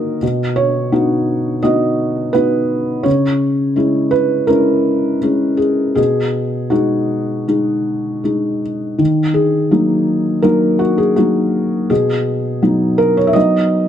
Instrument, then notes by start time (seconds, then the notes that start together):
felt piano
Already playing: A#3 D#4 F#4 A#4 D#5
0.23 B2
0.56 C#5
0.92 B3 D#4 F#4
1.63 B3 D#4 F#4 D#5
2.33 B3 D#4 F#4 B4
3.03 C#3 C#5
3.76 G#3 C#4 E4
4.11 B4
4.47 G#3 C#4 E4 A#4
5.23 G#3 C#4 E4
5.57 G#4
5.95 B2 G#4
6.70 G#3 D#4 F#4
7.48 G#3 D#4
8.24 G#3 D#4
8.98 D#3
9.34 G#4
9.71 F#3 A#3 D#4
10.42 F#3 A#3 D#4 A#4
10.79 F#4
10.98 G#4
11.16 F#3 A#3 D#4 F#4
11.90 B2 G#4
12.62 F#3 B3 D#4
12.98 A#4
13.17 C#5
13.27 E5
13.33 F#3 B3 D#4 D#5